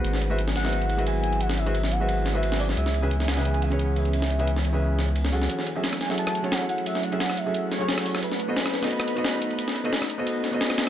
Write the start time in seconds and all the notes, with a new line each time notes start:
Already playing: G#3 B3 F#4 B4 C5 F#5
0.04 G#1 F#3 E4 G#4, ride
0.14 snare
0.21 ride
0.30 G#3 F#4 B4 C5 E5
0.38 ride
0.48 snare
0.56 F#5, snare, ride
0.64 G#3 F#4 B4 C5 E5, snare
0.73 ride
0.82 ride
0.89 ride
0.97 G#3 F#4 B4 C5 E5, ride
1.07 G#5, ride
1.24 ride
1.33 ride
1.41 F#5, ride
1.50 snare
1.58 E5, ride
1.66 G#3 F#4 B4 C5 E5, ride
1.75 ride
1.83 snare
1.92 F#5, ride
2.00 G#3 F#4 B4 C5 E5
2.09 ride
2.26 snare, ride
2.33 G#3 F#4 B4 C5 E5
2.43 ride
2.52 snare
2.60 D5, open hi-hat
2.69 snare
2.77 C#2 E3 B3 C#4 E5, ride
2.86 snare
2.94 ride
3.02 C#3 C#4 G#4 B4 E5
3.11 ride
3.20 snare
3.28 F#5, snare, ride
3.36 C#3 C#4 G#4 B4 E5, snare
3.45 G#5, ride
3.54 ride
3.62 E5, ride
3.70 C#3 C#4 G#4 B4 C#5, ride
3.79 F#5, ride
3.96 E5, ride
4.05 ride
4.13 ride
4.22 snare
4.30 ride
4.39 C#3 C#4 G#4 B4 E5, ride
4.47 ride
4.56 snare
4.64 ride
4.73 C#3 C#4 G#4 B4 E5
4.99 snare, ride
5.16 ride
5.25 snare
5.32 F#3 C#4 G#4 A4 F#5, open hi-hat
5.42 snare
5.49 F#3 A3 E4 F#5, closed hi-hat, ride
5.59 snare
5.67 closed hi-hat, ride
5.75 F#3 C#4 G#4 A4 E5
5.84 snare, closed hi-hat, ride
5.93 cross-stick, snare
6.01 G#5, snare, closed hi-hat, ride
6.09 F#3 C#4 G#4 A4 E5, snare
6.18 A5, closed hi-hat, ride
6.27 cross-stick, ride
6.35 closed hi-hat, ride
6.42 F#3 C#4 G#4 A4 C#5, closed hi-hat, ride
6.52 F#5, snare, closed hi-hat, ride
6.69 F#5, closed hi-hat, ride
6.78 ride
6.86 E5, closed hi-hat, ride
6.95 snare
7.03 F#5, closed hi-hat, ride
7.11 F#3 C#4 G#4 A4 E5, ride
7.20 snare, closed hi-hat, ride
7.30 cross-stick, snare
7.37 E5, closed hi-hat, ride
7.46 F#3 C#4 G#4 A4 E5
7.54 closed hi-hat, ride
7.72 C#5, snare, closed hi-hat, ride
7.79 F#3 C#4 G#4 A4 C#5, closed hi-hat
7.89 snare, closed hi-hat, ride
7.98 cross-stick, snare
8.06 closed hi-hat, open hi-hat
8.15 cross-stick, snare
8.22 D#4 B4 B5, closed hi-hat, ride
8.32 snare
8.39 closed hi-hat, ride
8.48 B3 F#4 A4 C5 D#5
8.57 C5, snare, closed hi-hat, ride
8.66 cross-stick, snare
8.74 B4, snare, closed hi-hat, ride
8.82 B3 C4 F#4 A4 D#5, snare
8.91 closed hi-hat, ride
9.00 cross-stick, ride
9.08 closed hi-hat, ride
9.16 B3 F#4 A4 C5 D#5, closed hi-hat, ride
9.25 snare, closed hi-hat, ride
9.42 closed hi-hat, ride
9.51 ride
9.59 closed hi-hat, ride
9.68 snare
9.76 closed hi-hat, ride
9.84 B3 F#4 A4 C5 D#5, ride
9.93 snare, closed hi-hat, ride
10.02 cross-stick, snare
10.10 closed hi-hat, ride
10.18 B3 F#4 A4 C5 D#5
10.27 closed hi-hat, ride
10.44 snare, closed hi-hat, ride
10.51 B3 F#4 A4 C5 D#5, closed hi-hat
10.61 snare, closed hi-hat, ride
10.70 cross-stick, snare
10.78 snare, closed hi-hat, ride